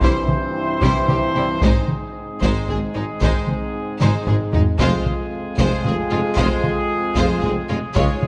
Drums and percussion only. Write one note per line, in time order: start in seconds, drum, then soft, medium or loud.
0.01 taiko loud
0.28 taiko mid medium
0.82 taiko medium
1.08 taiko mid medium
1.62 taiko medium
1.89 taiko mid medium
2.42 taiko medium
2.69 taiko mid medium
3.21 taiko medium
3.47 taiko mid medium
4.01 taiko mid medium
4.27 taiko low-mid loud
4.53 taiko low loud
4.79 taiko loud
5.06 taiko mid medium
5.58 taiko medium
5.85 taiko mid medium
6.37 taiko loud
6.64 taiko mid medium
7.16 taiko medium
7.43 taiko mid medium
7.96 taiko loud
8.23 taiko mid medium